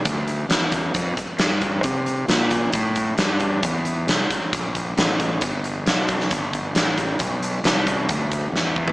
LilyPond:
<<
  \new Staff \with { instrumentName = "Fingered electric bass" } { \clef bass \time 4/4 \key g \mixolydian \tempo 4 = 134 d,4 e,4 f,8 r8 g,4 | c4 bes,4 a,4 g,4 | e,4 c,8 r8 bes,,4 a,,4 | g,,4 b,,4 g,,4 a,,4 |
b,,4 c,4 d,4 e,4 | }
  \new DrumStaff \with { instrumentName = "Drums" } \drummode { \time 4/4 <hh bd>8 hh8 <hh sn>8 <hh bd>8 <hh bd>8 <hh bd>8 <hh sn>8 <hh bd>8 | <hh bd>8 hh8 <hh sn>8 <hh bd>8 <hh bd>8 <hh bd>8 <hh sn>8 <hh bd>8 | <hh bd>8 hh8 <hh sn>8 <hh bd>8 <hh bd>8 <hh bd>8 <hh sn>8 <hh bd>8 | <hh bd>8 hh8 <hh sn>8 <hh bd>16 sn16 <hh bd>8 <hh bd>8 <hh sn>8 <hh bd>8 |
<hh bd>8 hh8 <hh sn>8 <hh bd>8 <hh bd>8 <hh bd>8 sn8 bd16 tomfh16 | }
>>